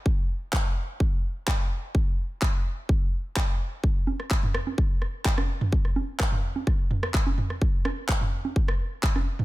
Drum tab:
CP |----x-------x---|----x-------x---|----x-------x---|----x-------x---|
SD |----------------|----------------|---r--r---r--r--|-r--r---r--r---r|
T2 |----------------|----------------|-----o---------o|-----o----o---o-|
CG |----------------|----------------|--o----o-----o--|--o----o-----o--|
BD |o---o---o---o---|o---o---o---o---|o---o---o---o---|o---o---o---o---|

CP |----x-------x---|
SD |--r------r---r--|
T2 |-----o---------o|
CG |--o----o-----o--|
BD |o---o---o---o---|